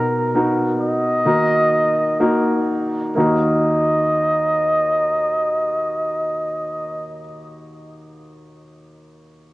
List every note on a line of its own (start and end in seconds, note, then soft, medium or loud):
0.00 0.76 B2 soft
0.00 0.30 B3 medium
0.00 0.30 D#4 soft
0.00 0.30 F#4 soft
0.00 0.30 A#4 medium
0.00 0.46 A#4 medium
0.35 1.21 B3 soft
0.35 1.21 D#4 soft
0.35 1.21 F#4 soft
0.35 1.21 A#4 medium
0.80 2.64 D#5 medium
1.25 2.64 D#3 soft
1.25 2.15 A#3 soft
1.25 2.15 D#4 soft
1.25 2.15 F#4 soft
1.25 2.15 A#4 medium
2.20 3.12 A#3 medium
2.20 3.12 D#4 soft
2.20 3.12 F#4 soft
2.20 3.12 A#4 medium
3.15 7.21 D#2 soft
3.15 7.19 A#3 medium
3.15 7.20 D#4 soft
3.15 7.21 F#4 soft
3.15 7.23 A#4 medium
3.15 7.21 D#5 medium